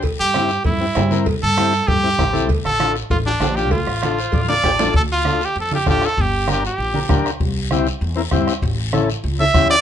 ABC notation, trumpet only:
X:1
M:4/4
L:1/8
Q:1/4=196
K:Dm
V:1 name="Trumpet"
z G3 E4 | z A3 G4 | z A2 z F D2 G | F4- F d3 |
A F2 G A G G A | G2 G G4 z | z8 | z4 z e2 d |]